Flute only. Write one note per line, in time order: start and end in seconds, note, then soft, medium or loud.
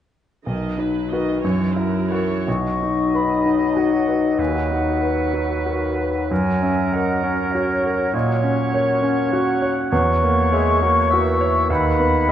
2.47 3.17 C#6 medium
3.15 3.80 B5 soft
3.78 4.39 F#5 soft
4.40 4.70 G#5 soft
4.71 5.96 F#5 soft
6.30 6.94 G#5 medium
6.92 7.53 F#5 soft
7.51 8.11 C#5 soft
8.12 8.44 D#5 medium
8.42 9.61 C#5 medium
9.91 11.65 C#6 medium
11.72 12.32 B5 medium